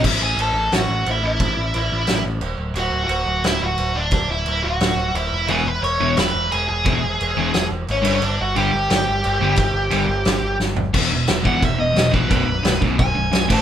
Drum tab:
CC |x-x-x-x-|x-x-x-x-|x-x-x-x-|x-x-x-x-|
SD |----o---|----o---|----o---|----o---|
FT |--------|--------|--------|--------|
BD |o-------|o-------|--------|o-------|

CC |x-x-x-x-|x-x-x-xx|x-x-x-x-|x-x-x---|
SD |----o---|----o---|----o---|----o-o-|
FT |--------|--------|--------|-------o|
BD |--------|o-------|--------|o-------|

CC |x-x-x-x-|x-x-x-xx|
SD |--o---o-|--o---o-|
FT |--------|--------|
BD |o--oo--o|o--oo--o|